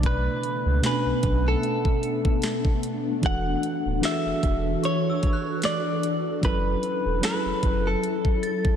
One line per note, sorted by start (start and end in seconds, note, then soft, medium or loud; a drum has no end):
0.00 0.28 B1 medium
0.00 0.60 B2 medium
0.00 0.60 A3 medium
0.00 3.20 A3 medium
0.00 3.20 B3 medium
0.00 0.61 D4 medium
0.00 6.39 D4 medium
0.00 0.62 D5 medium
0.00 kick loud
0.00 closed hi-hat medium
0.06 0.81 B4 loud
0.43 closed hi-hat medium
0.66 0.80 C#2 medium
0.82 1.85 B2 medium
0.82 1.86 A3 medium
0.82 0.91 C#4 medium
0.82 snare loud
0.82 closed hi-hat medium
0.86 1.48 B4 medium
0.86 1.87 G#5 medium
0.91 1.89 D4 medium
1.05 1.13 B1 medium
1.23 1.55 B1 loud
1.23 kick loud
1.23 closed hi-hat medium
1.48 2.81 A4 medium
1.63 closed hi-hat medium
1.85 kick medium
2.03 closed hi-hat medium
2.25 kick loud
2.42 snare loud
2.42 closed hi-hat medium
2.65 kick medium
2.83 closed hi-hat medium
3.21 3.55 E1 loud
3.21 3.73 E3 medium
3.21 6.40 E3 medium
3.21 3.74 D4 medium
3.21 6.40 F#4 medium
3.21 3.75 F#4 medium
3.21 8.76 A4 medium
3.21 3.75 A4 medium
3.21 kick loud
3.21 closed hi-hat medium
3.26 4.00 F#5 loud
3.63 closed hi-hat medium
3.86 4.00 D1 medium
4.01 5.05 E3 medium
4.01 5.05 D4 medium
4.01 5.06 F#4 medium
4.01 4.11 G#4 medium
4.01 4.85 E5 loud
4.01 snare loud
4.01 closed hi-hat medium
4.12 5.10 A4 medium
4.26 4.33 E1 medium
4.43 4.75 E1 loud
4.43 kick loud
4.43 closed hi-hat medium
4.83 5.65 C#5 medium
4.83 5.85 C#6 medium
4.83 closed hi-hat medium
5.10 6.06 E6 medium
5.23 kick medium
5.23 closed hi-hat medium
5.33 6.29 F#6 medium
5.62 6.44 D5 medium
5.62 snare loud
5.62 closed hi-hat medium
6.03 closed hi-hat medium
6.41 6.75 F#1 loud
6.41 6.94 F#3 medium
6.41 8.76 F#3 medium
6.41 6.94 C#4 medium
6.41 8.76 E4 medium
6.41 6.95 E4 medium
6.41 7.24 B4 loud
6.41 kick loud
6.41 closed hi-hat medium
6.45 6.96 A4 medium
6.83 closed hi-hat medium
7.05 7.20 E1 medium
7.21 8.25 F#3 medium
7.21 8.25 C#4 medium
7.21 8.26 E4 medium
7.21 7.87 B4 medium
7.21 snare loud
7.21 closed hi-hat medium
7.25 7.31 G#4 medium
7.32 8.30 A4 medium
7.45 7.52 F#1 soft
7.63 7.95 F#1 medium
7.63 kick loud
7.63 closed hi-hat medium
7.87 8.76 A4 medium
8.03 closed hi-hat medium
8.25 kick loud
8.43 8.76 A6 medium
8.43 closed hi-hat medium
8.65 kick loud